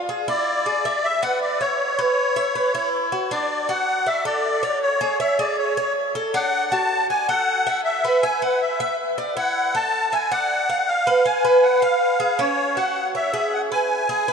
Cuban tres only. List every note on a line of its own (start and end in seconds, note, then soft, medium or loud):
0.09 0.27 G#4 medium
0.28 0.65 E4 medium
0.66 0.84 G#4 medium
0.85 1.22 E5 medium
1.23 1.59 B4 medium
1.61 1.97 E5 medium
1.99 2.35 B4 medium
2.36 2.55 E5 medium
2.55 2.74 B4 medium
2.75 3.11 E4 medium
3.12 3.31 F#4 medium
3.31 3.68 D4 medium
3.69 4.06 F#4 medium
4.06 4.25 D5 medium
4.25 4.62 A4 medium
4.63 5.00 C#5 medium
5.01 5.20 G#4 medium
5.20 5.39 C#5 medium
5.39 5.76 G#4 medium
5.77 6.14 C#5 medium
6.15 6.34 A4 medium
6.34 6.71 D4 medium
6.72 7.09 F#4 medium
7.10 7.28 D5 medium
7.29 7.65 A4 medium
7.67 8.03 E5 medium
8.05 8.23 B4 medium
8.23 8.42 E5 medium
8.42 8.79 B4 medium
8.80 9.17 E5 medium
9.18 9.36 D5 medium
9.37 9.73 E4 medium
9.75 10.11 A4 medium
10.13 10.31 E5 medium
10.32 10.68 D5 medium
10.69 11.06 F5 medium
11.07 11.25 B4 medium
11.25 11.44 F5 medium
11.45 11.81 B4 medium
11.82 12.19 F5 medium
12.20 12.38 G#4 medium
12.39 12.76 C#4 medium
12.77 13.14 F#4 medium
13.15 13.33 C#5 medium
13.34 13.70 G#4 medium
13.72 14.08 B4 medium
14.09 14.27 G#4 medium
14.28 14.33 B4 medium